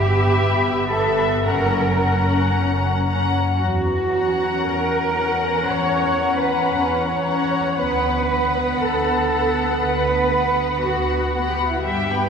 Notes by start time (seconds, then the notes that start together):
Already playing: G1 B3 G4 E5 B5
0.38 G1
0.91 B3 A4 E5 B5
1.44 F#1 C#4 A#4 F#5 A#5
1.99 C#4 F#5 A#5
2.55 F#1
3.06 C#4 F#5 A#5
3.61 E2 F#4
4.12 C#4 F#5 A#5
4.64 E2 A#4
5.14 C#4 F#5 A#5
5.67 E2 C#5
6.20 C#4 F#5 A#5
6.37 B4
6.73 E2
7.07 C#5
7.24 C#4 F#5 A#5
7.77 D2 B3 B4 F#5 B5
8.29 B3 F#5 B5
8.80 D2 A4
9.33 B3 F#5 B5
9.82 D2 B4
10.31 F#5 B5
10.36 B3
10.83 D2 F#4
11.34 B3 F#5 B5
11.49 G4
11.58 F#4
11.67 E4
11.76 F#4
11.84 G2 G3 G4 E5 G5
12.12 B3 G5 B5